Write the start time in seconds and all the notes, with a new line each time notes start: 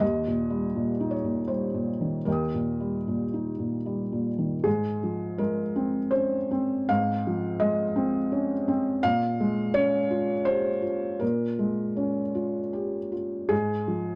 0.00 D#2 D#5
0.27 A#2
0.50 G3
0.76 A#2
1.00 D#4
1.11 C#5
1.24 A#2
1.48 G3 C5
1.74 A#2
2.01 D#3
2.25 D#2 A#4 D#5
2.30 G5 D#6
2.54 A#2
2.80 G3
3.08 A#2
3.34 D#4
3.59 A#2
3.86 G3
4.12 A#2
4.38 D#3
4.64 G#2 G#4
5.03 F3
5.38 G#3 A#4
5.76 C4
6.11 C#4 C5
6.51 C4
6.89 G#2 F5
7.27 F3
7.60 G#3 D#5
7.96 C4
8.32 C#4
8.68 C4
9.03 A#2 F5
9.40 G#3
9.74 C#4 C#5
10.10 F4
10.45 G4 C5
10.82 F4
11.20 A#2 A#4
11.59 G#3
11.97 C#4
12.35 F4
12.73 G4
13.12 F4
13.49 G#2 G#4
13.87 F3